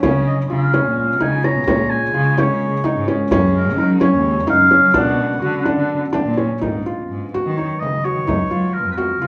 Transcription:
0.01 ambient pad C#3 G#3 F4, cello C#3, felt piano C#4, frame drum
0.27 oboe D#5, frame drum
0.49 cello C#3, felt piano F4, oboe F5, frame drum
0.74 felt piano C#4, frame drum
0.85 cello A#2
0.97 oboe F5, frame drum
1.20 cello C#3, felt piano D#4, oboe G#5, frame drum
1.44 felt piano C#4, oboe A#5
1.56 cello B2
1.68 cello A#2, ambient pad A#3 C#4, felt piano C#4, frame drum
1.90 oboe G#5, frame drum
2.14 cello C#3, felt piano F4, frame drum
2.38 felt piano C#4, oboe C#5, frame drum
2.51 cello C#3
2.61 frame drum
2.84 felt piano D#4, frame drum
2.97 cello G#2
3.08 felt piano C#4
3.31 cello F#2, ambient pad F#3 A#4, felt piano C#4, frame drum
3.55 oboe A#4, frame drum
3.77 cello F#3, felt piano D#4, oboe A#4, frame drum
4.00 felt piano C#4, oboe C#5, frame drum
4.14 cello D#2
4.24 frame drum
4.47 cello F#2, felt piano D#4, oboe F5, frame drum
4.71 felt piano C#4
4.83 cello F#3
4.94 cello B2, ambient pad B3 D4 F#4, felt piano D4, frame drum
4.98 oboe F#5
5.42 cello D3, felt piano F#4
5.65 felt piano D4, frame drum
5.77 cello D3
6.13 felt piano D4, frame drum
6.26 cello A#2
6.37 felt piano C#4
6.61 cello G#2, ambient pad G#3 B4, felt piano D#4, frame drum
6.65 ambient pad F#3
6.86 felt piano F4, frame drum
7.10 cello G#2
7.34 felt piano F#4, frame drum
7.46 cello D#3
7.57 felt piano D#4, oboe C#5, frame drum
7.79 cello C#3, oboe D#5, frame drum
8.05 felt piano F#4, oboe C#5
8.15 cello D#3
8.27 cello F#2, ambient pad A#3 F4 A#4, felt piano D#4, frame drum
8.50 cello F#3, felt piano F4, frame drum
8.73 oboe A#4
8.86 cello F2
8.92 oboe A#4 B4
8.97 felt piano F#4, frame drum
9.21 cello C#3, felt piano F4, frame drum

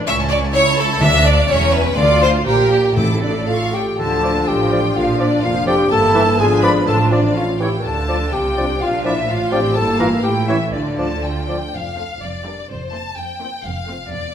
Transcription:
0.07 cello section C#2, double bass section C#2, viola section C#4, violin section E5 C#6
0.20 violin section A5
0.30 violin section D5 C#6
0.45 violin section A5
0.54 viola section E4, violin section C#5 C#6
0.69 violin section A5
0.79 violin section A4 C#6
0.92 violin section A5
1.01 cello section D2, double bass section D2, timpani D3, viola section D4, violin section D5 E5
1.14 violin section F5
1.26 violin section D5
1.38 violin section F5
1.49 double bass section E1, cello section E2, viola section C#4, violin section C#5 E5
1.61 violin section G5
1.73 violin section B4 E5
1.85 violin section G5
1.97 cello section D2, double bass section D2, timpani D3, viola section F4, violin section D5 F5
2.22 violin section C5
2.46 double bass section A#1, cello section A#2, viola section G4, violin section A#4 G5
2.72 violin section G4
2.97 double bass section A1, timpani A2, cello section A2, violin section E4 D6, viola section A4
3.22 clarinet D4, violin section D5, flute D5
3.47 clarinet F4, violin section F5 C#6, flute F5
3.73 clarinet G4, flute G5, violin section G5
3.98 double bass section D2, cello section D3, viola section D3 F4, french horn section F3 D4, clarinet A4, violin section A5, flute A5
4.11 viola section F3
4.23 bassoon F3, viola section A3, oboe D5
4.36 viola section D4
4.48 double bass section A1, cello section A2, viola section A3, clarinet G4, violin section G5, flute G5
4.59 viola section F3
4.72 viola section D3, bassoon F3, oboe D5
4.84 viola section F3
4.95 double bass section A#1, cello section A#2, viola section D3, french horn section F3 D4, clarinet F4, flute F5, violin section F5
5.08 viola section F3
5.19 bassoon F3, viola section A#3, clarinet D4, oboe D5, violin section D5, flute D5
5.31 viola section D4
5.42 double bass section F1, cello section F2, french horn section F3 D4, viola section A#3, clarinet F4, violin section F5, flute F5
5.54 viola section F3
5.66 viola section D3, bassoon F3, clarinet G4, oboe D5, flute G5, violin section G5
5.77 viola section F3
5.89 double bass section G1, cello section G2, french horn section E3 A#3, viola section A#3 E4, clarinet A4, violin section A5, flute A5
6.14 bassoon E3, french horn section C4, oboe E5
6.38 double bass section G#1, cello section G#2, french horn section F3 D4, viola section B3 F4, clarinet G#4, violin section G#5, flute G#5
6.63 bassoon F3, clarinet B4, oboe D5, violin section B5, flute B5
6.87 double bass section A1, timpani A2, cello section A2, french horn section F3 D4, viola section D4 F4, clarinet A4, violin section A5, flute A5
7.11 bassoon F3, clarinet D4, violin section D5, oboe D5, flute D5
7.35 french horn section E3 C#4, viola section C#4, clarinet F4, violin section F5, flute F5
7.59 bassoon E3, viola section E4, clarinet G4, oboe C#5, violin section G5, flute G5
7.78 clarinet A#4
7.84 double bass section D2, cello section D3, viola section D4 F4, clarinet A4, violin section A5, flute A5
8.09 bassoon F3, french horn section F3 D4, oboe D5
8.33 double bass section C2, cello section C3, clarinet G4, violin section G5, flute G5
8.57 french horn section F3 D4, bassoon F3, oboe D5
8.80 double bass section A#1, cello section A#2, viola section D4 F4, clarinet F4, violin section F5, flute F5
9.04 french horn section F3 D4, bassoon F3, clarinet E4, oboe D5, violin section E5, flute E5
9.27 double bass section A1, cello section A2, viola section D4 F4, clarinet F4, violin section F5, flute F5
9.52 bassoon F3, french horn section F3 D4, viola section C4, clarinet G4, oboe D5, flute G5, violin section G5
9.75 double bass section G1, cello section G2, viola section A#3 E4, clarinet A4, violin section A5, flute A5
9.99 french horn section E3 A#3, bassoon E3, clarinet F4, oboe A#4, violin section F5, flute F5
10.23 double bass section A1, cello section A2, viola section A3 E4, clarinet G4, violin section G5, flute G5
10.48 french horn section E3 C#4, bassoon E3, clarinet E4, oboe C#5, violin section E5, flute E5
10.73 double bass section D2, cello section D3, viola section A3 F4, clarinet D4, flute D5, violin section D5
10.98 bassoon F3, french horn section F3 D4, oboe D5, violin section A5
11.25 violin section G5
11.48 french horn section F3 D4, bassoon F3, oboe D5
11.73 double bass section F1, cello section F2, violin section F5
11.98 viola section A3 C4, violin section F4 A4
12.21 double bass section F1, cello section F2, violin section D5
12.45 viola section G3 D4, violin section G4 A#4
12.69 double bass section F1, cello section F2, violin section C5
12.93 viola section A#3 C4, violin section E4 C5 A5
13.17 cello section F2, violin section G5
13.41 viola section A#3 C4, violin section E4 C5
13.64 double bass section F1, cello section F2, violin section F5
13.88 viola section A3 C4, violin section F4 C5
14.11 double bass section E1, cello section E2, violin section D5

